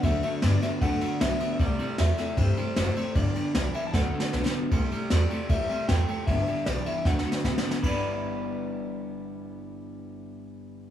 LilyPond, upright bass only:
\new Staff \with { instrumentName = "Upright bass" } { \clef bass \time 4/4 \key g \major \tempo 4 = 154 d,8 r8 g,8 r8 a,8 r8 b,,8 r8 | c,8 r8 e,8 r8 g,8 r8 fis,,8 r8 | g,,8 r8 c,8 r8 d,8 r8 b,,8 r8 | c,8 r8 e,8 r8 a,,8 r8 e,8 r8 |
g,,8 r8 b,,8 r8 d,8 r8 c8 r8 | g,,1~ | g,,1 | }